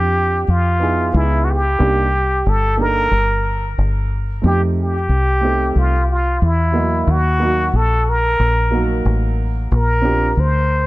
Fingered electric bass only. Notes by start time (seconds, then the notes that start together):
Already playing: F2
0.48 F2
1.14 C#2
1.80 C2
2.46 G1
3.11 G1
3.78 G1
4.44 F2
5.09 C2
5.76 C2
6.42 E2
7.07 D#2
7.73 A#1
8.40 A#1
9.05 A1
9.72 A#1
10.37 D2